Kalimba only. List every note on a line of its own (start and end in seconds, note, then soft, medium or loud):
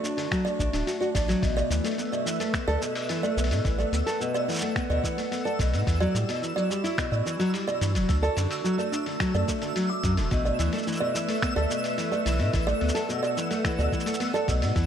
0.45 0.58 D5 loud
1.01 1.14 D5 medium
1.15 1.23 D5 medium
1.57 1.70 D5 loud
2.12 2.25 D5 medium
2.68 2.76 D5 loud
3.23 3.36 D5 loud
3.79 3.92 D5 medium
4.34 4.42 D5 loud
4.90 5.03 D5 medium
5.45 5.58 D5 medium
6.00 6.09 D5 loud
6.56 6.69 D5 loud
7.12 7.25 D5 medium
7.68 7.75 D5 loud
8.23 8.36 D5 loud
8.79 8.92 D5 medium
9.35 9.42 D5 medium
9.90 9.98 D6 medium
10.45 10.59 D5 medium
11.00 11.09 D5 loud
11.56 11.70 D5 loud
12.12 12.25 D5 medium
12.67 12.75 D5 loud
13.23 13.36 D5 loud
13.79 13.92 D5 medium
14.34 14.42 D5 loud